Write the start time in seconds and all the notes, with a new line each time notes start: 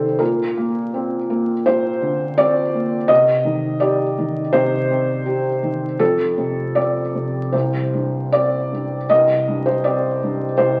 Already playing: C3 D#3 C4 G4 A4 C5 D5
0.19 A#2 A#4
0.57 A#3
0.94 C4
1.30 A#3
1.66 A#2 C5
2.02 D3
2.38 C4 D5
2.74 A#3
3.08 C3 D#5
3.45 D#3
3.80 G4 D5
4.18 D#3
4.53 C3 C5
4.90 C4
5.26 G4
5.63 D#3
5.99 F2 A4
6.38 C3
6.75 C4 D5
7.15 C3
7.52 C2 C5
7.93 G2
8.32 C4 D5
8.72 G2
9.09 C2 D#5
9.48 G2
9.66 C5
9.84 C4 D5
10.23 G2
10.58 C2 C5